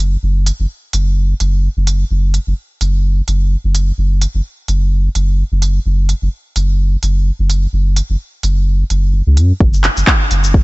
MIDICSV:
0, 0, Header, 1, 3, 480
1, 0, Start_track
1, 0, Tempo, 468750
1, 236, Time_signature, 4, 2, 24, 8
1, 10891, End_track
2, 0, Start_track
2, 0, Title_t, "Sub bass"
2, 0, Program_c, 0, 38
2, 0, Note_on_c, 0, 30, 96
2, 168, Note_off_c, 0, 30, 0
2, 236, Note_on_c, 0, 30, 102
2, 524, Note_off_c, 0, 30, 0
2, 611, Note_on_c, 0, 30, 85
2, 674, Note_off_c, 0, 30, 0
2, 957, Note_on_c, 0, 30, 84
2, 1369, Note_off_c, 0, 30, 0
2, 1437, Note_on_c, 0, 30, 90
2, 1725, Note_off_c, 0, 30, 0
2, 1812, Note_on_c, 0, 30, 94
2, 2089, Note_off_c, 0, 30, 0
2, 2157, Note_on_c, 0, 30, 99
2, 2445, Note_off_c, 0, 30, 0
2, 2532, Note_on_c, 0, 30, 84
2, 2595, Note_off_c, 0, 30, 0
2, 2876, Note_on_c, 0, 30, 86
2, 3289, Note_off_c, 0, 30, 0
2, 3358, Note_on_c, 0, 30, 89
2, 3646, Note_off_c, 0, 30, 0
2, 3731, Note_on_c, 0, 30, 95
2, 4009, Note_off_c, 0, 30, 0
2, 4076, Note_on_c, 0, 30, 97
2, 4365, Note_off_c, 0, 30, 0
2, 4450, Note_on_c, 0, 30, 86
2, 4514, Note_off_c, 0, 30, 0
2, 4796, Note_on_c, 0, 30, 86
2, 5209, Note_off_c, 0, 30, 0
2, 5276, Note_on_c, 0, 30, 88
2, 5565, Note_off_c, 0, 30, 0
2, 5651, Note_on_c, 0, 30, 97
2, 5929, Note_off_c, 0, 30, 0
2, 5997, Note_on_c, 0, 30, 100
2, 6286, Note_off_c, 0, 30, 0
2, 6372, Note_on_c, 0, 30, 90
2, 6435, Note_off_c, 0, 30, 0
2, 6716, Note_on_c, 0, 30, 89
2, 7129, Note_off_c, 0, 30, 0
2, 7197, Note_on_c, 0, 30, 87
2, 7485, Note_off_c, 0, 30, 0
2, 7571, Note_on_c, 0, 30, 99
2, 7849, Note_off_c, 0, 30, 0
2, 7916, Note_on_c, 0, 30, 101
2, 8205, Note_off_c, 0, 30, 0
2, 8291, Note_on_c, 0, 30, 91
2, 8354, Note_off_c, 0, 30, 0
2, 8635, Note_on_c, 0, 30, 88
2, 9048, Note_off_c, 0, 30, 0
2, 9116, Note_on_c, 0, 30, 87
2, 9350, Note_off_c, 0, 30, 0
2, 9356, Note_on_c, 0, 30, 82
2, 9437, Note_off_c, 0, 30, 0
2, 9491, Note_on_c, 0, 37, 103
2, 9597, Note_on_c, 0, 42, 81
2, 9612, Note_off_c, 0, 37, 0
2, 9752, Note_off_c, 0, 42, 0
2, 9835, Note_on_c, 0, 30, 99
2, 10124, Note_off_c, 0, 30, 0
2, 10211, Note_on_c, 0, 30, 88
2, 10274, Note_off_c, 0, 30, 0
2, 10555, Note_on_c, 0, 30, 90
2, 10891, Note_off_c, 0, 30, 0
2, 10891, End_track
3, 0, Start_track
3, 0, Title_t, "Drums"
3, 0, Note_on_c, 9, 46, 97
3, 98, Note_off_c, 9, 46, 0
3, 475, Note_on_c, 9, 46, 86
3, 578, Note_off_c, 9, 46, 0
3, 955, Note_on_c, 9, 46, 96
3, 1057, Note_off_c, 9, 46, 0
3, 1435, Note_on_c, 9, 46, 84
3, 1538, Note_off_c, 9, 46, 0
3, 1916, Note_on_c, 9, 46, 96
3, 2018, Note_off_c, 9, 46, 0
3, 2396, Note_on_c, 9, 46, 88
3, 2498, Note_off_c, 9, 46, 0
3, 2876, Note_on_c, 9, 46, 89
3, 2979, Note_off_c, 9, 46, 0
3, 3356, Note_on_c, 9, 46, 82
3, 3458, Note_off_c, 9, 46, 0
3, 3836, Note_on_c, 9, 46, 88
3, 3939, Note_off_c, 9, 46, 0
3, 4316, Note_on_c, 9, 46, 89
3, 4418, Note_off_c, 9, 46, 0
3, 4796, Note_on_c, 9, 46, 81
3, 4898, Note_off_c, 9, 46, 0
3, 5276, Note_on_c, 9, 46, 82
3, 5378, Note_off_c, 9, 46, 0
3, 5756, Note_on_c, 9, 46, 83
3, 5858, Note_off_c, 9, 46, 0
3, 6236, Note_on_c, 9, 46, 84
3, 6338, Note_off_c, 9, 46, 0
3, 6715, Note_on_c, 9, 46, 86
3, 6818, Note_off_c, 9, 46, 0
3, 7195, Note_on_c, 9, 46, 75
3, 7298, Note_off_c, 9, 46, 0
3, 7676, Note_on_c, 9, 46, 87
3, 7778, Note_off_c, 9, 46, 0
3, 8155, Note_on_c, 9, 46, 88
3, 8258, Note_off_c, 9, 46, 0
3, 8635, Note_on_c, 9, 46, 88
3, 8738, Note_off_c, 9, 46, 0
3, 9116, Note_on_c, 9, 46, 77
3, 9218, Note_off_c, 9, 46, 0
3, 9595, Note_on_c, 9, 46, 92
3, 9698, Note_off_c, 9, 46, 0
3, 9835, Note_on_c, 9, 36, 123
3, 9938, Note_off_c, 9, 36, 0
3, 9970, Note_on_c, 9, 69, 32
3, 10072, Note_off_c, 9, 69, 0
3, 10075, Note_on_c, 9, 39, 67
3, 10075, Note_on_c, 9, 46, 93
3, 10177, Note_off_c, 9, 39, 0
3, 10177, Note_off_c, 9, 46, 0
3, 10210, Note_on_c, 9, 69, 53
3, 10312, Note_off_c, 9, 69, 0
3, 10314, Note_on_c, 9, 39, 98
3, 10315, Note_on_c, 9, 36, 107
3, 10417, Note_off_c, 9, 39, 0
3, 10418, Note_off_c, 9, 36, 0
3, 10555, Note_on_c, 9, 46, 90
3, 10657, Note_off_c, 9, 46, 0
3, 10690, Note_on_c, 9, 69, 56
3, 10792, Note_off_c, 9, 69, 0
3, 10795, Note_on_c, 9, 36, 116
3, 10891, Note_off_c, 9, 36, 0
3, 10891, End_track
0, 0, End_of_file